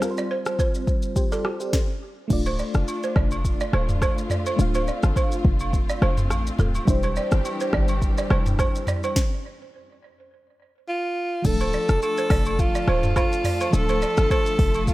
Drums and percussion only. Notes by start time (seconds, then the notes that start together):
0.02 cross-stick, shaker
0.17 shaker
0.46 cross-stick, shaker
0.59 kick, shaker
0.74 shaker
0.87 kick, shaker
1.02 shaker
1.16 kick, shaker
1.32 shaker
1.45 cross-stick
1.60 shaker
1.73 kick, snare
2.30 kick, crash, shaker
2.46 high agogo, shaker
2.59 shaker
2.74 cross-stick, shaker
2.88 high agogo, shaker
3.03 shaker
3.16 kick, cross-stick
3.31 high agogo, shaker
3.45 kick, shaker
3.60 shaker
3.73 cross-stick, high agogo
3.89 mid tom, shaker
4.02 kick, cross-stick, high agogo, shaker
4.18 shaker
4.30 mid tom, shaker
4.46 high agogo, shaker
4.59 shaker
4.74 high agogo, shaker
4.87 shaker
5.03 cross-stick, shaker
5.16 kick, high agogo, shaker
5.32 shaker
5.45 kick
5.60 high agogo, shaker
5.73 kick, shaker
5.89 shaker
6.02 cross-stick, high agogo
6.18 mid tom, shaker
6.30 cross-stick, high agogo, shaker
6.47 shaker
6.59 mid tom, shaker
6.75 high agogo, shaker
6.88 kick, shaker
7.03 high agogo, shaker
7.16 shaker
7.31 cross-stick, shaker
7.45 high agogo, shaker
7.60 shaker
7.73 kick, cross-stick
7.88 high agogo, shaker
8.02 kick, shaker
8.18 shaker
8.30 cross-stick, high agogo
8.46 mid tom, shaker
8.59 kick, cross-stick, high agogo, shaker
8.75 shaker
8.87 mid tom, shaker
9.03 high agogo, shaker
9.16 kick, snare
11.45 kick, crash, shaker
11.60 high agogo, shaker
11.73 shaker
11.89 cross-stick, shaker
12.02 high agogo, shaker
12.17 shaker
12.30 kick, cross-stick, open hi-hat
12.45 high agogo, shaker
12.59 kick, shaker
12.75 shaker
12.88 cross-stick, high agogo
13.03 mid tom, shaker
13.16 kick, cross-stick, high agogo, low woodblock, shaker
13.32 shaker
13.44 mid tom, open hi-hat, shaker
13.60 high agogo, shaker
13.73 shaker
13.89 high agogo, shaker
14.02 shaker
14.17 cross-stick, shaker
14.30 kick, high agogo, shaker
14.46 shaker
14.59 kick, open hi-hat
14.74 high agogo, shaker
14.87 kick, shaker